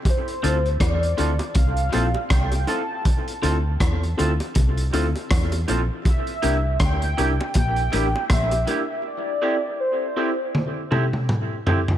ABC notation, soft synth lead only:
X:1
M:4/4
L:1/8
Q:"Swing 16ths" 1/4=80
K:Dm
V:1 name="Soft synth lead"
c2 d2 f2 g a- | a z6 z | e2 g2 g2 e2 | d2 c3 z3 |]